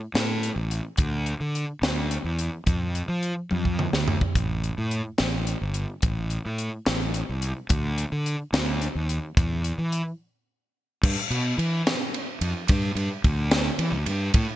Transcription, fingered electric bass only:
0.14 0.49 A2 medium
0.56 0.80 A1 medium
0.98 1.33 D2 medium
1.40 1.64 D3 medium
1.82 2.17 D2 medium
2.24 2.48 E2 medium
2.66 3.01 F2 medium
3.08 3.32 F3 medium
3.52 3.86 F2 medium
3.93 4.16 D2 medium
4.35 4.69 A1 medium
4.78 5.00 A2 medium
5.20 5.54 A1 medium
5.61 5.84 G1 medium
6.03 6.37 A1 medium
6.46 6.68 A2 medium
6.87 7.21 A1 medium
7.29 7.52 C2 medium
7.70 8.04 D2 medium
8.12 8.35 D3 medium
8.53 8.87 D2 medium
8.95 9.18 D#2 medium
9.37 9.71 E2 medium
9.78 10.01 E3 medium
11.03 11.15 G2 loud
11.30 11.53 B2 medium
11.58 11.81 E3 loud
12.41 12.53 F2 medium
12.69 12.92 G2 loud
12.95 13.07 G2 medium
13.24 13.69 D2 loud
13.79 13.93 E3 medium
13.92 14.03 D2 medium
14.06 14.29 G2 medium
14.34 14.46 A2 loud

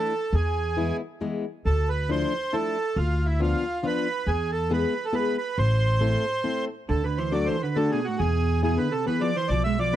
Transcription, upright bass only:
0.33 0.90 E2 loud
1.65 2.23 D2 medium
2.96 3.53 D2 medium
4.27 4.83 E2 medium
5.58 6.15 A1 loud
6.89 7.46 D2 medium
8.20 8.76 E2 medium
9.50 9.96 B1 medium

